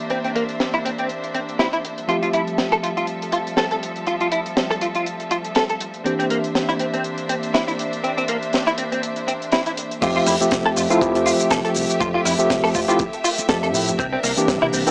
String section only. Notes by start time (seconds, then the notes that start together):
Already playing: A#3 D4 C5 E5
2.09 F3 G3 A4
6.05 A#3 D4 C5 E5
10.02 A3 G4 E5
13.99 D4 A#4